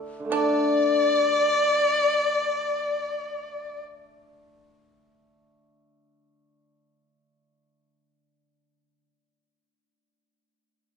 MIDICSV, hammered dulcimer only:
0, 0, Header, 1, 2, 480
1, 0, Start_track
1, 0, Tempo, 500000
1, 10526, End_track
2, 0, Start_track
2, 0, Title_t, "Hammered dulcimer"
2, 0, Program_c, 0, 15
2, 0, Note_on_c, 0, 50, 67
2, 0, Note_on_c, 0, 57, 61
2, 0, Note_on_c, 0, 62, 57
2, 0, Note_on_c, 0, 64, 56
2, 0, Note_on_c, 0, 69, 58
2, 178, Note_off_c, 0, 50, 0
2, 189, Note_on_c, 0, 50, 58
2, 227, Note_off_c, 0, 57, 0
2, 239, Note_on_c, 0, 57, 59
2, 272, Note_off_c, 0, 62, 0
2, 284, Note_on_c, 0, 62, 61
2, 1256, Note_off_c, 0, 64, 0
2, 1574, Note_off_c, 0, 69, 0
2, 6375, Note_off_c, 0, 62, 0
2, 7482, Note_off_c, 0, 57, 0
2, 8676, Note_off_c, 0, 50, 0
2, 10526, End_track
0, 0, End_of_file